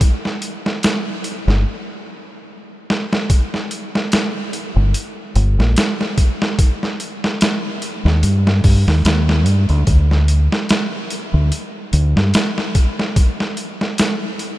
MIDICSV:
0, 0, Header, 1, 3, 480
1, 0, Start_track
1, 0, Key_signature, -2, "minor"
1, 0, Tempo, 821918
1, 6, Time_signature, 4, 2, 24, 8
1, 8517, End_track
2, 0, Start_track
2, 0, Title_t, "Fingered electric bass"
2, 0, Program_c, 0, 33
2, 861, Note_on_c, 0, 31, 95
2, 955, Note_off_c, 0, 31, 0
2, 2781, Note_on_c, 0, 31, 100
2, 2874, Note_off_c, 0, 31, 0
2, 3129, Note_on_c, 0, 31, 96
2, 3245, Note_off_c, 0, 31, 0
2, 3262, Note_on_c, 0, 34, 89
2, 3355, Note_off_c, 0, 34, 0
2, 4701, Note_on_c, 0, 39, 102
2, 4794, Note_off_c, 0, 39, 0
2, 4807, Note_on_c, 0, 43, 91
2, 5021, Note_off_c, 0, 43, 0
2, 5047, Note_on_c, 0, 43, 87
2, 5164, Note_off_c, 0, 43, 0
2, 5183, Note_on_c, 0, 39, 76
2, 5284, Note_off_c, 0, 39, 0
2, 5287, Note_on_c, 0, 39, 96
2, 5526, Note_off_c, 0, 39, 0
2, 5526, Note_on_c, 0, 43, 87
2, 5644, Note_off_c, 0, 43, 0
2, 5662, Note_on_c, 0, 38, 98
2, 5763, Note_off_c, 0, 38, 0
2, 5766, Note_on_c, 0, 38, 82
2, 6114, Note_off_c, 0, 38, 0
2, 6622, Note_on_c, 0, 38, 100
2, 6715, Note_off_c, 0, 38, 0
2, 6969, Note_on_c, 0, 38, 100
2, 7085, Note_off_c, 0, 38, 0
2, 7101, Note_on_c, 0, 43, 97
2, 7194, Note_off_c, 0, 43, 0
2, 8517, End_track
3, 0, Start_track
3, 0, Title_t, "Drums"
3, 5, Note_on_c, 9, 36, 110
3, 5, Note_on_c, 9, 42, 89
3, 63, Note_off_c, 9, 42, 0
3, 64, Note_off_c, 9, 36, 0
3, 147, Note_on_c, 9, 38, 41
3, 206, Note_off_c, 9, 38, 0
3, 244, Note_on_c, 9, 42, 66
3, 303, Note_off_c, 9, 42, 0
3, 386, Note_on_c, 9, 38, 50
3, 445, Note_off_c, 9, 38, 0
3, 485, Note_on_c, 9, 42, 85
3, 493, Note_on_c, 9, 38, 112
3, 544, Note_off_c, 9, 42, 0
3, 551, Note_off_c, 9, 38, 0
3, 726, Note_on_c, 9, 42, 69
3, 784, Note_off_c, 9, 42, 0
3, 866, Note_on_c, 9, 38, 40
3, 925, Note_off_c, 9, 38, 0
3, 1694, Note_on_c, 9, 38, 60
3, 1752, Note_off_c, 9, 38, 0
3, 1826, Note_on_c, 9, 38, 65
3, 1884, Note_off_c, 9, 38, 0
3, 1926, Note_on_c, 9, 36, 106
3, 1926, Note_on_c, 9, 42, 91
3, 1984, Note_off_c, 9, 42, 0
3, 1985, Note_off_c, 9, 36, 0
3, 2066, Note_on_c, 9, 38, 40
3, 2125, Note_off_c, 9, 38, 0
3, 2167, Note_on_c, 9, 42, 68
3, 2225, Note_off_c, 9, 42, 0
3, 2309, Note_on_c, 9, 38, 56
3, 2367, Note_off_c, 9, 38, 0
3, 2406, Note_on_c, 9, 42, 84
3, 2413, Note_on_c, 9, 38, 113
3, 2464, Note_off_c, 9, 42, 0
3, 2472, Note_off_c, 9, 38, 0
3, 2647, Note_on_c, 9, 42, 69
3, 2705, Note_off_c, 9, 42, 0
3, 2887, Note_on_c, 9, 42, 87
3, 2945, Note_off_c, 9, 42, 0
3, 3127, Note_on_c, 9, 42, 65
3, 3186, Note_off_c, 9, 42, 0
3, 3270, Note_on_c, 9, 38, 45
3, 3328, Note_off_c, 9, 38, 0
3, 3367, Note_on_c, 9, 42, 84
3, 3374, Note_on_c, 9, 38, 113
3, 3425, Note_off_c, 9, 42, 0
3, 3433, Note_off_c, 9, 38, 0
3, 3508, Note_on_c, 9, 38, 43
3, 3566, Note_off_c, 9, 38, 0
3, 3607, Note_on_c, 9, 36, 93
3, 3607, Note_on_c, 9, 42, 70
3, 3665, Note_off_c, 9, 36, 0
3, 3665, Note_off_c, 9, 42, 0
3, 3748, Note_on_c, 9, 38, 54
3, 3806, Note_off_c, 9, 38, 0
3, 3846, Note_on_c, 9, 36, 114
3, 3846, Note_on_c, 9, 42, 94
3, 3905, Note_off_c, 9, 36, 0
3, 3905, Note_off_c, 9, 42, 0
3, 3989, Note_on_c, 9, 38, 42
3, 4047, Note_off_c, 9, 38, 0
3, 4088, Note_on_c, 9, 42, 66
3, 4146, Note_off_c, 9, 42, 0
3, 4229, Note_on_c, 9, 38, 53
3, 4287, Note_off_c, 9, 38, 0
3, 4327, Note_on_c, 9, 42, 80
3, 4334, Note_on_c, 9, 38, 110
3, 4385, Note_off_c, 9, 42, 0
3, 4393, Note_off_c, 9, 38, 0
3, 4566, Note_on_c, 9, 42, 71
3, 4625, Note_off_c, 9, 42, 0
3, 4708, Note_on_c, 9, 38, 41
3, 4766, Note_off_c, 9, 38, 0
3, 4806, Note_on_c, 9, 42, 87
3, 4864, Note_off_c, 9, 42, 0
3, 4946, Note_on_c, 9, 38, 53
3, 5005, Note_off_c, 9, 38, 0
3, 5045, Note_on_c, 9, 46, 85
3, 5046, Note_on_c, 9, 36, 96
3, 5104, Note_off_c, 9, 36, 0
3, 5104, Note_off_c, 9, 46, 0
3, 5186, Note_on_c, 9, 38, 43
3, 5244, Note_off_c, 9, 38, 0
3, 5285, Note_on_c, 9, 42, 88
3, 5292, Note_on_c, 9, 38, 113
3, 5343, Note_off_c, 9, 42, 0
3, 5351, Note_off_c, 9, 38, 0
3, 5426, Note_on_c, 9, 38, 52
3, 5485, Note_off_c, 9, 38, 0
3, 5524, Note_on_c, 9, 42, 65
3, 5582, Note_off_c, 9, 42, 0
3, 5658, Note_on_c, 9, 42, 43
3, 5717, Note_off_c, 9, 42, 0
3, 5764, Note_on_c, 9, 42, 89
3, 5765, Note_on_c, 9, 36, 114
3, 5822, Note_off_c, 9, 42, 0
3, 5824, Note_off_c, 9, 36, 0
3, 5906, Note_on_c, 9, 38, 39
3, 5964, Note_off_c, 9, 38, 0
3, 6005, Note_on_c, 9, 42, 71
3, 6063, Note_off_c, 9, 42, 0
3, 6146, Note_on_c, 9, 38, 54
3, 6204, Note_off_c, 9, 38, 0
3, 6244, Note_on_c, 9, 42, 81
3, 6252, Note_on_c, 9, 38, 116
3, 6303, Note_off_c, 9, 42, 0
3, 6310, Note_off_c, 9, 38, 0
3, 6485, Note_on_c, 9, 42, 68
3, 6544, Note_off_c, 9, 42, 0
3, 6726, Note_on_c, 9, 42, 84
3, 6785, Note_off_c, 9, 42, 0
3, 6966, Note_on_c, 9, 42, 69
3, 7025, Note_off_c, 9, 42, 0
3, 7107, Note_on_c, 9, 38, 46
3, 7165, Note_off_c, 9, 38, 0
3, 7205, Note_on_c, 9, 42, 87
3, 7212, Note_on_c, 9, 38, 121
3, 7263, Note_off_c, 9, 42, 0
3, 7271, Note_off_c, 9, 38, 0
3, 7346, Note_on_c, 9, 38, 43
3, 7404, Note_off_c, 9, 38, 0
3, 7446, Note_on_c, 9, 42, 73
3, 7447, Note_on_c, 9, 36, 100
3, 7504, Note_off_c, 9, 42, 0
3, 7505, Note_off_c, 9, 36, 0
3, 7589, Note_on_c, 9, 38, 52
3, 7647, Note_off_c, 9, 38, 0
3, 7687, Note_on_c, 9, 36, 118
3, 7687, Note_on_c, 9, 42, 87
3, 7745, Note_off_c, 9, 42, 0
3, 7746, Note_off_c, 9, 36, 0
3, 7828, Note_on_c, 9, 38, 44
3, 7886, Note_off_c, 9, 38, 0
3, 7925, Note_on_c, 9, 42, 64
3, 7983, Note_off_c, 9, 42, 0
3, 8066, Note_on_c, 9, 38, 48
3, 8125, Note_off_c, 9, 38, 0
3, 8165, Note_on_c, 9, 42, 92
3, 8173, Note_on_c, 9, 38, 112
3, 8224, Note_off_c, 9, 42, 0
3, 8231, Note_off_c, 9, 38, 0
3, 8406, Note_on_c, 9, 42, 67
3, 8464, Note_off_c, 9, 42, 0
3, 8517, End_track
0, 0, End_of_file